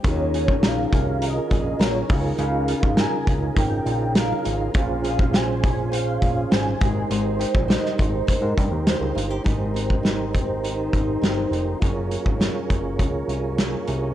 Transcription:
<<
  \new Staff \with { instrumentName = "Soft synth lead" } { \time 4/4 \key aes \major \tempo 4 = 102 des''4 f''4 ees''4 des''8. r16 | f''4 aes''4 g''4 f''8. r16 | f''4 aes''4 f''4 aes''4 | c''4 ees''8 c''8 bes'4. r8 |
r1 | r1 | }
  \new Staff \with { instrumentName = "Tonewheel organ" } { \time 4/4 \key aes \major <des' f' aes' bes'>2.~ <des' f' aes' bes'>8 <ees' f' aes' bes'>8~ | <ees' f' aes' bes'>1 | <des' f' aes' c''>2.~ <des' f' aes' c''>8 <ees' g' bes' c''>8~ | <ees' g' bes' c''>1 |
<ees' g' bes' c''>1 | <f' aes' bes' des''>1 | }
  \new Staff \with { instrumentName = "Nylon-string guitar" } { \time 4/4 \key aes \major ees8 aes'8 bes'8 des'8 bes'8 aes'8 bes'8 des8 | des8 f'8 bes'8 des'8 bes'8 f'8 bes'8 f'8 | bes,8 aes'8 c''8 des'8 c''8 aes'8 c''8 aes8 | aes8 g'8 c''8 ees'8 c''8 g'8 c''8 f'16 g'16 |
<aes, ees'>8 c'8 ees'8 c'8 ees8 ees'8 c'8 ees'8 | <ges, des'>8 bes8 des'8 bes4 des'8 bes8 des'8 | }
  \new Staff \with { instrumentName = "Analog synth bass" } { \clef bass \time 4/4 \key aes \major ees,4 bes,,8 c,4 bes,,8 bes,,8 des,8 | des,8. aes,8 r16 des,8 aes,,8 bes,,4 aes,,8 | bes,,2~ bes,,8 bes,,8 aes,,8 aes,,8 | aes,,8. bes,,8 r16 aes,,8 r16 aes,16 g,16 ees,8 des,16 g,,8 |
aes,,2~ aes,,8 aes,,8 g,,8 f,,8 | ges,,8. aes,,8 r16 ges,,8 des,8 c,4 c,8 | }
  \new DrumStaff \with { instrumentName = "Drums" } \drummode { \time 4/4 <hh bd>8 hh16 bd16 <hh sn>8 <hh bd>8 hh8 <hh bd>8 <hh sn>8 <hho bd>8 | hh8 hh16 bd16 <hh sn>8 <hh bd>8 <hh bd>8 hh8 <hh sn>8 hh8 | <hh bd>8 hh16 bd16 <hh sn>8 <hh bd>8 hh8 <hh bd>8 <hh sn>8 <hh bd>8 | hh8 hh16 bd16 <hh sn>16 sn16 <hh bd>8 <hh bd>8 <hh bd>8 <hh sn>8 hh8 |
<hh bd>8 hh16 bd16 <hh sn>8 <hh bd>8 hh8 <hh bd>8 <hh sn>8 hh8 | <hh bd>8 hh16 bd16 <hh sn>8 <hh bd>8 <hh bd>8 hh8 <hh sn>8 hh8 | }
>>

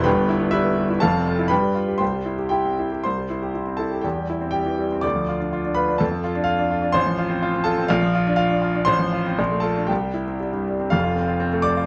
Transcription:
\new Staff \with { instrumentName = "Grand piano" } { \time 2/4 \key c \major \tempo 4 = 122 << { <b' g'' b''>4 <e' b' e''>4 | <a' f'' a''>4 <b' g'' b''>4 | <c'' g'' c'''>4 <g' g''>4 | <c'' c'''>4. <a' a''>8 |
<g' g''>4 <g' g''>4 | <d'' d'''>4. <b' b''>8 | <a' a''>4 <f' f''>4 | \key f \major <c'' c'''>4. <a' a''>8 |
<f' f''>4 <f' f''>4 | <c'' c'''>4. <a' a''>8 | <g' g''>4 r4 | <f' f''>4. <d'' d'''>8 | } \\ { <g,, g,>16 b16 e'16 b16 g16 b16 g16 e'16 | <f,, f,>16 c'16 f'16 e'16 g,16 g16 f'16 g'16 | c,16 g16 e'16 g'16 e'16 c'16 e'16 g'16 | c,16 g16 e'16 g'16 e'16 c'16 e'16 g'16 |
e,16 g16 e'16 c'16 g16 e16 g16 c'16 | d,16 f16 f'16 d'16 f'16 d'16 f'16 d'16 | f,16 f16 f'16 d'8 d'16 f'16 d'16 | a,,16 f16 f'16 c'16 f'16 c'16 f'16 c'16 |
bes,,16 f16 f'16 d'8 d'16 f'16 d'16 | a,,16 f16 f'16 c'16 bes,,16 a16 f'16 d'16 | c,16 g16 e'16 c'16 g16 g,16 g16 c'16 | <f,, f,>16 f'16 c'16 f'16 c'16 a16 c'16 f'16 | } >> }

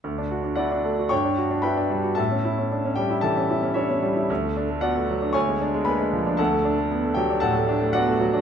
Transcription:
\new Staff \with { instrumentName = "Grand piano" } { \time 4/4 \key d \major \tempo 4 = 114 << { r4 <fis' d'' fis''>4 <cis'' g'' cis'''>4 <b' g'' b''>4 | <a' e'' a''>4. <g' g''>8 <a' e'' a''>4 <e' cis'' e''>4 | r4 <fis' d'' fis''>4 <cis'' aes'' cis'''>4 <b' aes'' b''>4 | <a' fis'' a''>4. <g' g''>8 <a' fis'' a''>4 <fis' d'' fis''>4 | } \\ { d,16 d'16 fis'16 d'16 e'16 d'16 a16 fis'16 g,16 d'16 fis'16 d'16 e'16 d'16 g16 fis'16 | a,16 cis'16 e'16 cis'16 d'16 cis'16 g16 e'16 e16 cis'16 e'16 cis'16 d'16 cis'16 g16 e'16 | d,16 a16 d'16 a16 b16 a16 fis16 d'16 d,16 aes16 d'16 aes16 bes16 aes16 f16 d'16 | d,16 a16 d'16 a16 b16 a16 fis16 d'16 a,16 a16 d'16 a16 b16 a16 fis16 d'16 | } >> }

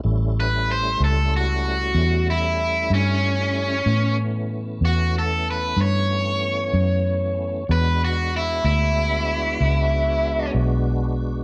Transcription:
<<
  \new Staff \with { instrumentName = "Overdriven electric guitar" } { \time 12/8 \key a \mixolydian \tempo 4. = 63 r8 b'8 c''8 a'8 fis'4. e'4 cis'4.~ | cis'8 r4 fis'8 a'8 b'8 cis''2. | b'8 fis'8 e'8 e'2. r4. | }
  \new Staff \with { instrumentName = "Tonewheel organ" } { \time 12/8 \key a \mixolydian <g a cis' e'>1. | <e a b cis'>1. | <gis b d' fis'>1. | }
  \new Staff \with { instrumentName = "Fingered electric bass" } { \clef bass \time 12/8 \key a \mixolydian a,,4. cis,4. e,4. g,4. | a,4. e,4. g,4. fis,4. | e,4. d,4. cis,4. b,,4. | }
>>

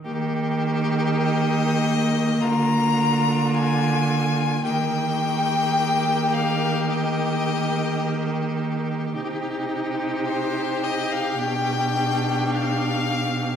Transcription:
<<
  \new Staff \with { instrumentName = "Violin" } { \time 4/4 \key ees \major \tempo 4 = 54 r4 ees''4 bes''4 aes''4 | g''4. f''8 ees''4. r8 | r4 c''8 ees''16 f''16 g''4 f''4 | }
  \new Staff \with { instrumentName = "Violin" } { \time 4/4 \key ees \major g'2 f'2 | g'1 | g'1 | }
  \new Staff \with { instrumentName = "Viola" } { \time 4/4 \key ees \major bes1 | bes1 | ees'2 d'2 | }
  \new Staff \with { instrumentName = "Cello" } { \clef bass \time 4/4 \key ees \major ees2 d2 | ees1 | c2 b,2 | }
>>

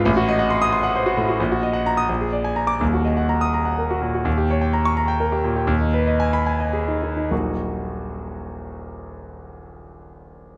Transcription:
\new Staff \with { instrumentName = "Grand piano" } { \time 6/8 \key ees \minor \tempo 4. = 82 << { r4 r16 ees'''8 r4 r16 | r4 r16 ees'''16 r4 r16 d'''16 | r4 r16 ees'''8 r4 r16 | r4 r16 des'''8 r4 r16 |
r4 r16 ces'''8 r4 r16 | <ees,, bes,, ges bes ees' ges'>2.~ | <ees,, bes,, ges bes ees' ges'>2. | } \\ { a,,16 fis'16 ees''16 fis''16 c'''8 c'''16 fis''16 c''16 fis'16 a,16 fis'16 | bes,,16 ges'16 ees''16 ges''16 bes''8 bes,,16 aes'16 d''16 aes''16 bes''8 | <ees,, ees,>16 ges'16 ees''16 ges''16 bes''8 bes''16 ges''16 bes'16 ges'16 bes,16 ges'16 | ees,16 g'16 des''16 g''16 bes''8 bes''16 g''16 bes'16 g'16 bes,16 g'16 |
ees,16 ees'16 ces''16 ees''16 aes''8 aes''16 ees''16 aes'16 ees'16 ees16 ees'16 | r2. | r2. | } >> }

